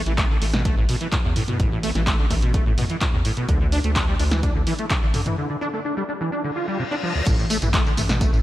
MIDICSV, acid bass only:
0, 0, Header, 1, 2, 480
1, 0, Start_track
1, 0, Tempo, 472441
1, 1623, Time_signature, 4, 2, 24, 8
1, 8561, End_track
2, 0, Start_track
2, 0, Title_t, "Acid bass"
2, 0, Program_c, 0, 38
2, 65, Note_on_c, 0, 52, 75
2, 129, Note_off_c, 0, 52, 0
2, 182, Note_on_c, 0, 57, 78
2, 282, Note_off_c, 0, 57, 0
2, 304, Note_on_c, 0, 50, 76
2, 369, Note_off_c, 0, 50, 0
2, 422, Note_on_c, 0, 57, 76
2, 462, Note_off_c, 0, 57, 0
2, 544, Note_on_c, 0, 47, 75
2, 642, Note_off_c, 0, 47, 0
2, 663, Note_on_c, 0, 57, 82
2, 763, Note_off_c, 0, 57, 0
2, 785, Note_on_c, 0, 45, 76
2, 850, Note_off_c, 0, 45, 0
2, 903, Note_on_c, 0, 47, 99
2, 969, Note_off_c, 0, 47, 0
2, 1025, Note_on_c, 0, 52, 75
2, 1089, Note_off_c, 0, 52, 0
2, 1144, Note_on_c, 0, 45, 82
2, 1183, Note_off_c, 0, 45, 0
2, 1264, Note_on_c, 0, 45, 76
2, 1303, Note_off_c, 0, 45, 0
2, 1383, Note_on_c, 0, 45, 77
2, 1449, Note_off_c, 0, 45, 0
2, 1504, Note_on_c, 0, 47, 77
2, 1602, Note_off_c, 0, 47, 0
2, 1623, Note_on_c, 0, 45, 84
2, 1723, Note_off_c, 0, 45, 0
2, 1744, Note_on_c, 0, 45, 76
2, 1809, Note_off_c, 0, 45, 0
2, 1862, Note_on_c, 0, 57, 105
2, 1929, Note_off_c, 0, 57, 0
2, 1984, Note_on_c, 0, 52, 77
2, 2049, Note_off_c, 0, 52, 0
2, 2103, Note_on_c, 0, 57, 81
2, 2203, Note_off_c, 0, 57, 0
2, 2223, Note_on_c, 0, 50, 76
2, 2289, Note_off_c, 0, 50, 0
2, 2342, Note_on_c, 0, 57, 76
2, 2382, Note_off_c, 0, 57, 0
2, 2462, Note_on_c, 0, 47, 76
2, 2561, Note_off_c, 0, 47, 0
2, 2581, Note_on_c, 0, 57, 82
2, 2682, Note_off_c, 0, 57, 0
2, 2704, Note_on_c, 0, 45, 74
2, 2769, Note_off_c, 0, 45, 0
2, 2822, Note_on_c, 0, 47, 101
2, 2889, Note_off_c, 0, 47, 0
2, 2943, Note_on_c, 0, 52, 77
2, 3009, Note_off_c, 0, 52, 0
2, 3062, Note_on_c, 0, 45, 82
2, 3102, Note_off_c, 0, 45, 0
2, 3183, Note_on_c, 0, 45, 77
2, 3223, Note_off_c, 0, 45, 0
2, 3303, Note_on_c, 0, 45, 77
2, 3369, Note_off_c, 0, 45, 0
2, 3423, Note_on_c, 0, 47, 77
2, 3521, Note_off_c, 0, 47, 0
2, 3543, Note_on_c, 0, 50, 81
2, 3643, Note_off_c, 0, 50, 0
2, 3664, Note_on_c, 0, 50, 78
2, 3729, Note_off_c, 0, 50, 0
2, 3783, Note_on_c, 0, 62, 102
2, 3849, Note_off_c, 0, 62, 0
2, 3906, Note_on_c, 0, 57, 75
2, 3970, Note_off_c, 0, 57, 0
2, 4023, Note_on_c, 0, 62, 81
2, 4123, Note_off_c, 0, 62, 0
2, 4145, Note_on_c, 0, 55, 75
2, 4209, Note_off_c, 0, 55, 0
2, 4264, Note_on_c, 0, 62, 75
2, 4303, Note_off_c, 0, 62, 0
2, 4384, Note_on_c, 0, 52, 77
2, 4482, Note_off_c, 0, 52, 0
2, 4503, Note_on_c, 0, 62, 86
2, 4603, Note_off_c, 0, 62, 0
2, 4624, Note_on_c, 0, 50, 75
2, 4689, Note_off_c, 0, 50, 0
2, 4743, Note_on_c, 0, 52, 102
2, 4810, Note_off_c, 0, 52, 0
2, 4866, Note_on_c, 0, 57, 76
2, 4930, Note_off_c, 0, 57, 0
2, 4984, Note_on_c, 0, 50, 82
2, 5023, Note_off_c, 0, 50, 0
2, 5105, Note_on_c, 0, 50, 79
2, 5144, Note_off_c, 0, 50, 0
2, 5225, Note_on_c, 0, 50, 81
2, 5291, Note_off_c, 0, 50, 0
2, 5346, Note_on_c, 0, 52, 78
2, 5443, Note_off_c, 0, 52, 0
2, 5465, Note_on_c, 0, 50, 86
2, 5564, Note_off_c, 0, 50, 0
2, 5586, Note_on_c, 0, 50, 77
2, 5650, Note_off_c, 0, 50, 0
2, 5703, Note_on_c, 0, 62, 101
2, 5769, Note_off_c, 0, 62, 0
2, 5825, Note_on_c, 0, 57, 77
2, 5890, Note_off_c, 0, 57, 0
2, 5943, Note_on_c, 0, 62, 81
2, 6043, Note_off_c, 0, 62, 0
2, 6064, Note_on_c, 0, 55, 76
2, 6129, Note_off_c, 0, 55, 0
2, 6184, Note_on_c, 0, 62, 75
2, 6223, Note_off_c, 0, 62, 0
2, 6304, Note_on_c, 0, 52, 76
2, 6402, Note_off_c, 0, 52, 0
2, 6423, Note_on_c, 0, 62, 83
2, 6523, Note_off_c, 0, 62, 0
2, 6544, Note_on_c, 0, 50, 76
2, 6609, Note_off_c, 0, 50, 0
2, 6663, Note_on_c, 0, 65, 77
2, 6763, Note_off_c, 0, 65, 0
2, 6783, Note_on_c, 0, 55, 75
2, 6881, Note_off_c, 0, 55, 0
2, 6902, Note_on_c, 0, 48, 84
2, 6942, Note_off_c, 0, 48, 0
2, 7023, Note_on_c, 0, 62, 103
2, 7062, Note_off_c, 0, 62, 0
2, 7142, Note_on_c, 0, 53, 76
2, 7242, Note_off_c, 0, 53, 0
2, 7262, Note_on_c, 0, 38, 77
2, 7328, Note_off_c, 0, 38, 0
2, 7381, Note_on_c, 0, 45, 83
2, 7482, Note_off_c, 0, 45, 0
2, 7502, Note_on_c, 0, 45, 80
2, 7568, Note_off_c, 0, 45, 0
2, 7620, Note_on_c, 0, 57, 101
2, 7688, Note_off_c, 0, 57, 0
2, 7743, Note_on_c, 0, 52, 80
2, 7809, Note_off_c, 0, 52, 0
2, 7861, Note_on_c, 0, 57, 79
2, 7962, Note_off_c, 0, 57, 0
2, 7984, Note_on_c, 0, 50, 77
2, 8049, Note_off_c, 0, 50, 0
2, 8102, Note_on_c, 0, 57, 75
2, 8142, Note_off_c, 0, 57, 0
2, 8223, Note_on_c, 0, 47, 75
2, 8321, Note_off_c, 0, 47, 0
2, 8341, Note_on_c, 0, 57, 86
2, 8442, Note_off_c, 0, 57, 0
2, 8463, Note_on_c, 0, 45, 76
2, 8529, Note_off_c, 0, 45, 0
2, 8561, End_track
0, 0, End_of_file